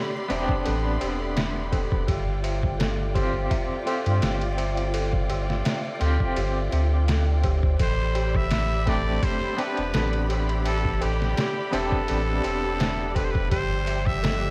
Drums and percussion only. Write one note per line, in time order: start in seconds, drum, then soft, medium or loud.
0.14 tabla na soft
0.30 ride medium
0.30 tabla na loud
0.49 kick medium
0.49 tabla na soft
0.65 ride medium
0.65 tabla na medium
0.86 tabla na soft
1.01 ride medium
1.01 tabla na medium
1.21 tabla na soft
1.37 snare loud
1.37 ride medium
1.37 tabla na soft
1.55 tabla na soft
1.72 kick loud
1.72 ride medium
1.72 tabla na medium
1.91 kick loud
1.91 tabla na soft
2.08 kick loud
2.08 ride medium
2.08 tabla na medium
2.44 ride medium
2.44 tabla na medium
2.63 kick loud
2.63 tabla na soft
2.80 snare loud
2.80 ride medium
2.80 tabla na soft
2.99 tabla na soft
3.15 kick loud
3.15 ride medium
3.15 tabla na medium
3.34 tabla na soft
3.51 kick loud
3.51 ride medium
3.51 tabla na soft
3.71 tabla na soft
3.87 ride medium
3.87 tabla na loud
4.06 ride soft
4.06 tabla na soft
4.22 snare loud
4.22 ride medium
4.22 tabla na medium
4.41 ride soft
4.41 tabla na soft
4.58 ride medium
4.58 tabla na medium
4.77 ride soft
4.77 tabla na soft
4.93 ride medium
4.93 tabla na medium
5.13 kick medium
5.13 tabla na soft
5.29 ride medium
5.29 tabla na loud
5.49 snare soft
5.49 tabla na soft
5.65 snare loud
5.65 ride medium
5.65 tabla na medium
5.85 tabla na soft
6.00 ride medium
6.00 tabla na medium
6.20 kick medium
6.20 tabla na soft
6.36 ride medium
6.36 tabla na medium
6.55 tabla na soft
6.72 ride medium
6.72 tabla na medium
6.92 tabla na soft
7.08 snare loud
7.08 ride medium
7.08 tabla na soft
7.27 tabla na soft
7.43 kick loud
7.43 ride medium
7.43 tabla na medium
7.63 kick medium
7.63 tabla na soft
7.79 kick loud
7.79 ride medium
7.79 tabla na medium
7.99 tabla na soft
8.15 ride medium
8.15 tabla na medium
8.34 kick loud
8.34 tabla na soft
8.50 snare loud
8.50 ride medium
8.50 tabla na soft
8.71 tabla na soft
8.86 kick loud
8.86 ride medium
8.86 tabla na medium
9.06 tabla na soft
9.23 kick loud
9.23 ride medium
9.23 tabla na soft
9.41 tabla na soft
9.58 ride medium
9.58 tabla na medium
9.77 ride soft
9.77 tabla na soft
9.94 snare loud
9.94 ride medium
9.94 tabla na soft
10.13 ride soft
10.30 ride medium
10.30 tabla na medium
10.49 ride soft
10.49 tabla na soft
10.65 ride medium
10.65 tabla na soft
10.85 kick medium
10.85 tabla na soft
11.01 ride medium
11.01 tabla na medium
11.21 snare medium
11.21 tabla na soft
11.37 snare loud
11.37 ride medium
11.37 tabla na medium
11.56 tabla na soft
11.72 ride medium
11.72 tabla na medium
11.92 kick medium
12.08 ride medium
12.08 tabla na soft
12.27 tabla na soft
12.44 ride medium
12.44 tabla na medium
12.63 tabla na soft
12.80 snare loud
12.80 ride medium
12.80 tabla na soft
13.15 kick loud
13.15 ride medium
13.15 tabla na medium
13.35 kick loud
13.35 tabla na soft
13.51 kick loud
13.51 ride medium
13.51 tabla na soft
13.70 tabla na soft
13.86 ride medium
13.86 tabla na medium
14.06 kick loud
14.06 tabla na soft
14.23 snare loud
14.23 ride medium
14.23 tabla na soft